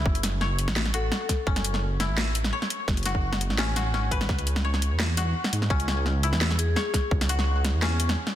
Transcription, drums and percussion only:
0.06 kick loud
0.15 closed hi-hat soft
0.23 snare medium
0.23 closed hi-hat medium
0.41 snare soft
0.59 closed hi-hat medium
0.68 snare medium
0.76 snare loud
0.85 snare medium
0.94 closed hi-hat medium
1.12 snare medium
1.29 kick medium
1.29 snare soft
1.29 closed hi-hat medium
1.47 kick loud
1.56 snare medium
1.56 closed hi-hat soft
1.64 closed hi-hat medium
1.74 snare soft
2.00 snare medium
2.00 closed hi-hat medium
2.18 snare loud
2.18 snare soft
2.35 closed hi-hat medium
2.44 snare medium
2.62 snare medium
2.70 closed hi-hat medium
2.88 kick loud
2.88 snare medium
2.97 closed hi-hat soft
3.03 snare soft
3.03 closed hi-hat soft
3.06 closed hi-hat medium
3.09 closed hi-hat soft
3.15 kick medium
3.33 snare medium
3.41 closed hi-hat medium
3.50 snare soft
3.58 snare loud
3.76 snare medium
3.76 closed hi-hat medium
3.94 snare soft
4.11 kick medium
4.11 closed hi-hat medium
4.21 snare medium
4.29 kick loud
4.29 snare soft
4.39 closed hi-hat soft
4.47 closed hi-hat medium
4.56 snare medium
4.74 snare soft
4.82 closed hi-hat medium
5.00 snare loud
5.00 snare medium
5.17 snare soft
5.17 closed hi-hat medium
5.44 snare medium
5.53 closed hi-hat medium
5.62 snare soft
5.70 kick loud
5.80 closed hi-hat soft
5.88 snare medium
6.06 snare soft
6.23 closed hi-hat medium
6.33 snare medium
6.41 snare loud
6.51 snare medium
6.59 closed hi-hat medium
6.76 snare medium
6.94 kick medium
6.94 snare medium
6.94 closed hi-hat medium
7.11 kick loud
7.21 snare medium
7.21 closed hi-hat soft
7.29 closed hi-hat medium
7.39 snare medium
7.65 snare medium
7.65 closed hi-hat medium
7.82 snare loud
7.82 snare medium
8.00 closed hi-hat medium
8.09 snare medium
8.27 snare medium

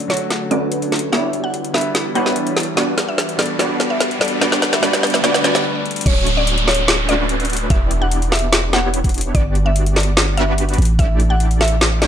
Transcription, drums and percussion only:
0.00 closed hi-hat medium
0.10 snare soft
0.10 closed hi-hat soft
0.14 closed hi-hat medium
0.17 closed hi-hat medium
0.31 snare soft
0.31 closed hi-hat medium
0.51 closed hi-hat medium
0.72 closed hi-hat medium
0.82 closed hi-hat medium
0.92 snare medium
0.92 closed hi-hat soft
0.96 closed hi-hat medium
0.99 closed hi-hat medium
1.13 snare medium
1.13 closed hi-hat medium
1.33 closed hi-hat medium
1.54 closed hi-hat medium
1.64 closed hi-hat medium
1.74 snare medium
1.74 closed hi-hat soft
1.78 closed hi-hat medium
1.81 closed hi-hat medium
1.95 snare medium
1.95 closed hi-hat medium
2.15 closed hi-hat medium
2.26 snare medium
2.36 closed hi-hat medium
2.47 closed hi-hat medium
2.57 snare medium
2.57 closed hi-hat medium
2.60 closed hi-hat medium
2.63 closed hi-hat medium
2.77 snare medium
2.77 closed hi-hat medium
2.98 snare medium
2.98 closed hi-hat medium
3.18 snare medium
3.18 closed hi-hat medium
3.29 closed hi-hat medium
3.39 snare medium
3.39 closed hi-hat soft
3.42 closed hi-hat medium
3.46 closed hi-hat medium
3.59 snare medium
3.59 closed hi-hat medium
3.80 snare medium
3.80 closed hi-hat medium
4.00 snare medium
4.00 closed hi-hat medium
4.11 closed hi-hat medium
4.21 snare medium
4.21 closed hi-hat medium
4.25 closed hi-hat medium
4.28 closed hi-hat medium
4.42 snare medium
4.42 closed hi-hat medium
4.52 snare medium
4.62 snare medium
4.62 closed hi-hat medium
4.73 snare medium
4.83 snare loud
4.83 closed hi-hat medium
4.93 snare medium
4.93 closed hi-hat medium
5.03 snare loud
5.03 closed hi-hat soft
5.07 closed hi-hat medium
5.10 snare medium
5.10 closed hi-hat medium
5.24 snare loud
5.24 closed hi-hat medium
5.34 snare medium
5.44 snare loud
5.44 closed hi-hat medium
5.55 snare medium
5.86 closed hi-hat medium
5.91 closed hi-hat medium
5.96 closed hi-hat medium
6.01 closed hi-hat medium
6.06 kick loud
6.06 closed hi-hat medium
6.06 crash loud
6.27 closed hi-hat medium
6.47 closed hi-hat medium
6.58 closed hi-hat medium
6.68 snare medium
6.68 closed hi-hat medium
6.71 closed hi-hat medium
6.74 closed hi-hat medium
6.88 snare loud
6.88 closed hi-hat medium
7.09 closed hi-hat medium
7.29 closed hi-hat medium
7.40 closed hi-hat medium
7.45 closed hi-hat medium
7.50 closed hi-hat medium
7.53 closed hi-hat medium
7.57 closed hi-hat medium
7.70 kick loud
7.70 closed hi-hat medium
7.91 closed hi-hat medium
8.11 closed hi-hat medium
8.22 closed hi-hat medium
8.32 snare medium
8.32 closed hi-hat soft
8.36 closed hi-hat medium
8.39 closed hi-hat medium
8.53 snare loud
8.53 closed hi-hat medium
8.73 snare medium
8.73 closed hi-hat medium
8.94 closed hi-hat medium
9.04 kick medium
9.04 closed hi-hat soft
9.09 closed hi-hat medium
9.14 closed hi-hat medium
9.18 closed hi-hat medium
9.21 closed hi-hat medium
9.35 kick loud
9.35 closed hi-hat medium
9.55 closed hi-hat medium
9.76 closed hi-hat medium
9.86 closed hi-hat medium
9.96 snare medium
9.96 closed hi-hat soft
10.00 closed hi-hat medium
10.03 closed hi-hat medium
10.17 snare loud
10.17 closed hi-hat medium
10.38 closed hi-hat medium
10.58 closed hi-hat medium
10.69 closed hi-hat soft
10.74 closed hi-hat medium
10.78 closed hi-hat medium
10.82 closed hi-hat medium
10.85 closed hi-hat medium
10.99 kick loud
10.99 closed hi-hat medium
11.20 closed hi-hat medium
11.40 closed hi-hat medium
11.51 closed hi-hat medium
11.61 snare medium
11.61 closed hi-hat soft
11.64 closed hi-hat medium
11.68 closed hi-hat medium
11.81 snare loud
11.81 closed hi-hat medium
12.02 snare medium
12.02 closed hi-hat medium

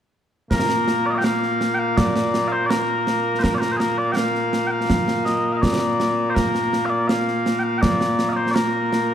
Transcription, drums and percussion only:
0.51 concert bass drum medium
0.51 snare medium
0.69 snare medium
0.88 snare medium
1.24 snare medium
1.43 snare soft
1.61 snare medium
1.98 concert bass drum medium
1.98 snare loud
2.16 snare medium
2.34 snare medium
2.71 snare medium
3.07 snare medium
3.44 concert bass drum medium
3.44 snare medium
3.62 snare medium
3.80 snare medium
4.17 snare loud
4.35 snare soft
4.53 snare medium
4.90 concert bass drum medium
4.90 snare medium
5.08 snare medium
5.26 snare medium
5.63 concert bass drum medium
5.63 snare loud
6.00 snare medium
6.36 concert bass drum medium
6.36 snare medium
6.55 snare medium
6.73 snare medium
7.09 snare medium
7.28 snare soft
7.46 snare medium
7.83 concert bass drum medium
7.83 snare loud
8.01 snare medium
8.19 snare medium
8.56 snare loud
8.93 snare medium

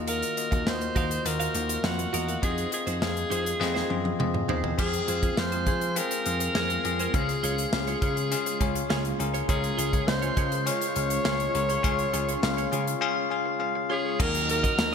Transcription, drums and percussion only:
0.08 closed hi-hat medium
0.22 closed hi-hat soft
0.37 closed hi-hat medium
0.52 kick medium
0.52 closed hi-hat soft
0.67 snare loud
0.81 closed hi-hat soft
0.96 kick medium
0.96 closed hi-hat medium
1.11 closed hi-hat medium
1.26 closed hi-hat medium
1.40 closed hi-hat medium
1.55 closed hi-hat medium
1.69 closed hi-hat medium
1.84 snare loud
1.99 closed hi-hat medium
2.14 closed hi-hat medium
2.28 closed hi-hat soft
2.43 kick loud
2.43 closed hi-hat medium
2.58 closed hi-hat soft
2.72 closed hi-hat medium
2.87 closed hi-hat soft
3.02 snare loud
3.17 closed hi-hat soft
3.32 closed hi-hat medium
3.46 closed hi-hat medium
3.61 snare medium
3.76 snare soft
3.90 high tom medium
4.05 high tom medium
4.20 mid tom medium
4.34 mid tom medium
4.49 floor tom medium
4.64 floor tom medium
4.79 kick loud
4.79 crash medium
4.94 closed hi-hat medium
5.08 closed hi-hat medium
5.23 kick medium
5.23 closed hi-hat soft
5.37 snare loud
5.52 closed hi-hat soft
5.67 kick medium
5.67 closed hi-hat medium
5.81 closed hi-hat medium
5.96 closed hi-hat medium
6.11 closed hi-hat medium
6.26 closed hi-hat medium
6.40 closed hi-hat medium
6.55 snare loud
6.70 closed hi-hat medium
6.85 closed hi-hat medium
6.99 closed hi-hat soft
7.14 kick loud
7.14 closed hi-hat medium
7.29 closed hi-hat medium
7.44 closed hi-hat medium
7.58 closed hi-hat soft
7.73 snare loud
7.87 closed hi-hat soft
8.02 kick medium
8.02 closed hi-hat medium
8.17 closed hi-hat medium
8.32 closed hi-hat medium
8.46 closed hi-hat medium
8.61 kick medium
8.61 closed hi-hat medium
8.75 closed hi-hat medium
8.90 snare loud
9.05 closed hi-hat medium
9.20 closed hi-hat medium
9.34 closed hi-hat soft
9.49 kick loud
9.49 closed hi-hat medium
9.64 closed hi-hat soft
9.79 closed hi-hat medium
9.93 kick medium
9.93 closed hi-hat soft
10.08 snare loud
10.22 closed hi-hat medium
10.37 kick medium
10.37 closed hi-hat medium
10.52 closed hi-hat medium
10.67 closed hi-hat medium
10.81 closed hi-hat medium
10.96 closed hi-hat medium
11.10 closed hi-hat medium
11.25 snare loud
11.40 closed hi-hat medium
11.55 closed hi-hat medium
11.69 closed hi-hat soft
11.84 kick loud
11.84 closed hi-hat medium
11.99 closed hi-hat medium
12.14 closed hi-hat medium
12.29 closed hi-hat soft
12.43 snare loud
12.58 closed hi-hat soft
12.73 closed hi-hat medium
12.88 closed hi-hat medium
14.20 kick loud
14.20 crash loud
14.35 closed hi-hat medium
14.49 closed hi-hat medium
14.64 kick medium
14.64 closed hi-hat medium
14.78 snare loud
14.78 tambourine medium

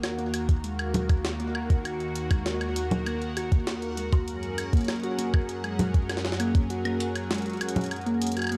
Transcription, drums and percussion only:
0.03 snare loud
0.03 closed hi-hat medium
0.03 high woodblock medium
0.19 closed hi-hat soft
0.34 closed hi-hat medium
0.34 high woodblock medium
0.49 kick loud
0.49 closed hi-hat medium
0.64 closed hi-hat medium
0.79 closed hi-hat soft
0.79 high woodblock medium
0.94 closed hi-hat medium
0.94 low conga loud
1.09 kick loud
1.09 closed hi-hat medium
1.09 high woodblock soft
1.25 snare loud
1.25 closed hi-hat soft
1.40 closed hi-hat soft
1.55 high woodblock medium
1.70 kick loud
1.70 closed hi-hat soft
1.85 closed hi-hat soft
1.85 high woodblock medium
2.00 closed hi-hat soft
2.16 closed hi-hat medium
2.31 kick loud
2.31 closed hi-hat soft
2.31 high woodblock medium
2.46 snare loud
2.46 closed hi-hat medium
2.61 closed hi-hat soft
2.61 high woodblock medium
2.76 closed hi-hat medium
2.91 closed hi-hat medium
2.91 low conga medium
3.06 closed hi-hat medium
3.06 high woodblock medium
3.22 closed hi-hat soft
3.37 closed hi-hat loud
3.37 high woodblock medium
3.52 kick loud
3.52 closed hi-hat soft
3.67 snare loud
3.67 closed hi-hat soft
3.82 closed hi-hat soft
3.97 closed hi-hat medium
4.13 kick loud
4.13 closed hi-hat soft
4.13 high woodblock soft
4.28 closed hi-hat medium
4.43 closed hi-hat soft
4.58 closed hi-hat medium
4.58 high woodblock medium
4.73 kick loud
4.73 closed hi-hat medium
4.77 closed hi-hat soft
4.81 closed hi-hat soft
4.84 snare loud
4.84 closed hi-hat soft
4.88 closed hi-hat medium
4.88 high woodblock medium
4.92 closed hi-hat soft
4.96 closed hi-hat soft
5.00 closed hi-hat soft
5.03 closed hi-hat soft
5.19 closed hi-hat medium
5.34 kick loud
5.34 high woodblock medium
5.49 closed hi-hat medium
5.64 closed hi-hat soft
5.64 high woodblock medium
5.79 closed hi-hat medium
5.79 low conga loud
5.94 kick loud
5.94 closed hi-hat soft
6.09 snare medium
6.09 closed hi-hat medium
6.09 high woodblock medium
6.17 snare medium
6.25 snare medium
6.25 closed hi-hat soft
6.32 snare medium
6.40 closed hi-hat medium
6.40 high woodblock medium
6.55 kick loud
6.55 closed hi-hat soft
6.70 closed hi-hat medium
6.85 closed hi-hat soft
6.85 high woodblock medium
7.00 closed hi-hat medium
7.16 closed hi-hat medium
7.16 high woodblock medium
7.31 snare loud
7.31 closed hi-hat medium
7.34 closed hi-hat soft
7.38 closed hi-hat soft
7.42 closed hi-hat soft
7.46 closed hi-hat soft
7.50 closed hi-hat soft
7.53 closed hi-hat soft
7.57 closed hi-hat soft
7.61 closed hi-hat medium
7.61 high woodblock medium
7.69 closed hi-hat medium
7.76 closed hi-hat medium
7.76 low conga medium
7.81 closed hi-hat soft
7.84 closed hi-hat medium
7.86 closed hi-hat soft
7.91 closed hi-hat medium
7.91 high woodblock medium
7.96 closed hi-hat soft
8.01 closed hi-hat soft
8.06 closed hi-hat soft
8.22 closed hi-hat loud
8.27 closed hi-hat medium
8.32 closed hi-hat medium
8.37 closed hi-hat soft
8.37 high woodblock soft
8.39 closed hi-hat soft
8.39 high woodblock soft
8.42 high woodblock medium
8.44 closed hi-hat soft
8.44 high woodblock medium
8.47 high woodblock medium
8.49 closed hi-hat medium
8.49 high woodblock medium

